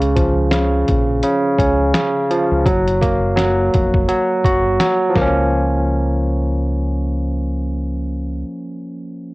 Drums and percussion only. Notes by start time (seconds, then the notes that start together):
0.02 closed hi-hat
0.17 kick, closed hi-hat
0.51 snare, closed hi-hat
0.88 kick, closed hi-hat
1.23 closed hi-hat
1.59 kick, closed hi-hat
1.94 snare, closed hi-hat
2.31 closed hi-hat
2.66 kick, closed hi-hat
2.88 closed hi-hat
3.01 kick, snare, closed hi-hat
3.37 snare, closed hi-hat
3.74 kick, closed hi-hat
3.94 kick
4.09 closed hi-hat
4.44 kick, closed hi-hat
4.80 snare, closed hi-hat
5.16 kick, snare